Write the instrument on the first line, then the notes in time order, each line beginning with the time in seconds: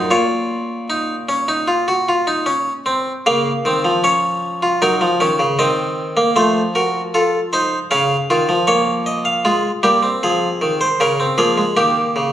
harpsichord
0.11 A#2 F4 C#5
0.90 D#4
1.29 C#4
1.48 D#4
1.68 F4
1.88 F#4
2.09 F4
2.27 D#4
2.46 C#4
2.86 C4
3.26 C#3 A#3 F5
3.65 D#3 C4
3.85 F3
4.04 C#4 C#5
4.63 F4
4.82 F#3 D#4 A#4
5.01 F3
5.20 D#3 C#4
5.39 C#3
5.59 D#3 C4 D#5
6.17 A#3
6.36 F3 A3 C5
6.75 F#4 A#4
7.14 F4 A4
7.53 D#4 C5
7.91 C#3 C#4 F5
8.30 D#3 F4
8.49 F3
8.67 A#3 C#5
9.06 D#5
9.25 F5
9.45 G#3 F4
9.83 G3 A#3 G4
10.03 C4
10.23 F3 G#4
10.61 D#3
10.81 C5
11.00 C#3 C#4 A#4
11.20 C4
11.38 F3 A#3 G#4
11.58 G#3
11.77 D#3 A#3 G4
12.16 C#3